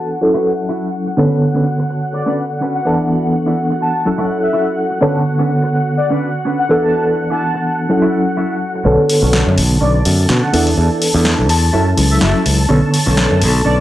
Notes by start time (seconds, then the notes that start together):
Already playing: E3 B3 D4 A4 F#5 A5
0.21 F#3 C#4 E4 A4, muted clean electric guitar stroke
0.34 E4 F#4 B4
0.69 E4 F#4 A4
1.06 muted clean electric guitar stroke
1.17 D3 B3 C#4 D4 A4 B4 C#5 F#5
1.54 C#4 D4 A4 B4
1.78 muted clean electric guitar stroke
1.89 muted clean electric guitar stroke
2.13 D5, muted clean electric guitar stroke
2.26 C#4 D4 A4 B4 D5
2.61 C#4 D4 A4 B4
2.75 F#5
2.85 E3 B3 D4 E4 A4
3.46 D4 E4 A4
3.70 muted clean electric guitar stroke
3.81 A5, muted clean electric guitar stroke
4.05 F#3 C#4 E4 A4, muted clean electric guitar stroke
4.18 E4 F#4 A4
4.43 E5
4.53 E4 F#4 A4 E5
4.90 muted clean electric guitar stroke
5.01 D3 B3 C#4 D4 A4 B4 C#5
5.38 C#4 D4 A4 B4
5.62 muted clean electric guitar stroke
5.73 muted clean electric guitar stroke
5.97 D5, muted clean electric guitar stroke
6.10 C#4 D4 A4 B4 D5
6.45 C#4 D4 A4 B4
6.59 F#5
6.69 E3 B3 D4 E4 A4
6.83 A5
7.30 D4 E4 A4 A5
7.54 muted clean electric guitar stroke
7.65 muted clean electric guitar stroke
7.89 F#3 C#4 E4 A4, muted clean electric guitar stroke
8.02 E4 F#4 A4
8.37 E4 F#4 A4
8.74 muted clean electric guitar stroke
8.85 B1 D3 B3 C#4 D4 A4 C#5 A5
9.09 open hi-hat
9.22 B1 C#4 D4 F#4
9.33 snare
9.47 F#2
9.58 B1, open hi-hat
9.81 B1 C#4 D4 A4 D5
9.94 D5
10.05 F#2, muted clean electric guitar stroke, open hi-hat
10.29 B2 C#4 D4 A4, snare
10.43 F#5
10.53 E2 E3 B3 D4 E4 A4, open hi-hat
10.67 open hi-hat
10.78 E2
11.02 open hi-hat
11.14 E2 D4 E4 A4
11.25 snare
11.39 B1
11.49 E2 A5, open hi-hat
11.73 F#2 F#3 C#4 E4 F#4 A4
11.97 C#2, muted clean electric guitar stroke, open hi-hat
12.11 E5
12.21 F#1 E4 F#4 A4 E5, snare
12.46 C#2, open hi-hat
12.69 B1 D3 B3 C#4 D4 A4 C#5
12.94 open hi-hat
13.06 B1 C#4 D4 A4
13.17 snare
13.31 F#2
13.42 B1, open hi-hat
13.65 B1 C#4 D4 A4 D5